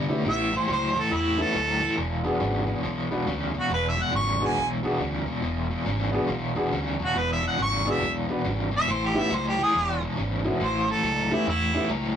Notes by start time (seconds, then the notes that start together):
Already playing: C3
0.08 D3 A3 B3 C#4 E4 G4
0.25 A1 A2 E3 B3 C#4 E4 G4
0.30 E5
0.52 A2 E3
0.56 C5
0.68 C#2 A2 F#3
0.72 C5
0.94 A2 E3
0.99 A4
1.11 E2 A2 E3 E4
1.37 A2 E3 B3 C#4 E4 A4
1.42 A4
1.53 D2 A2 F#3
1.80 A2 E3
1.96 E1 E2 B2
2.24 E2 B2 B3 D4 F#4 G#4
2.40 G#1 E2 C#3
2.67 E2 B2
2.83 B1 E2 B2
3.10 E2 B2 B3 D4 F#4 B4
3.27 D2 E2 C#3
3.54 E2 B2
3.60 F#4
3.70 E1 E2 B2 B4
3.89 E5
3.96 E2 B2
4.02 F#5
4.12 G#1 E2 C#3 C#6
4.39 E2 B2 B3 D4 F#4 G#4
4.46 G#5
4.55 B1 E2 B2
4.83 E2 B2 B3 D4 F#4 G#4
4.98 D2 E2 C#3
5.26 E2 B2
5.42 E1 E2 B2
5.70 E2 B2
5.85 G#1 E2 C#3
6.12 E2 B2 B3 D4 F#4 G#4
6.28 B1 E2 B2
6.55 E2 B2 B3 D4 F#4 G#4
6.71 D2 E2 C#3
6.99 E2 B2
7.05 F#4
7.14 E1 E2 B2 B4
7.33 E5
7.41 E2 B2
7.47 F#5
7.57 G#1 E2 C#3
7.62 C#6
7.85 E2 B2 B3 D4 F#4 G#4
7.90 E5
8.00 B1 E2 B2
8.28 E2 B2 B3 D4 F#4 B4
8.44 G#1 E2 C#3
8.71 E2 B2
8.77 E5
8.88 A1 A2 E3 C5
9.07 G4
9.14 A2 E3 B3 C#4 E4 G4
9.19 E5
9.30 C#2 A2 F#3
9.35 C5
9.48 G4
9.58 A2 E3
9.63 G#4
9.73 E1 E2 B2
10.01 E2 B2
10.16 G#1 E2 C#3
10.44 E2 A2 B2 B3 C#4 E4 F#4
10.60 A1 A2 E3 C5
10.88 A2 E3 A4
11.03 C#2 A2 F#3
11.31 A2 E3 A3 B3 C#4 E4 G4
11.47 E2 A2 E3 E4
11.73 A2 E3 A3 B3 C#4 E4 G4
11.89 C#2 A2 F#3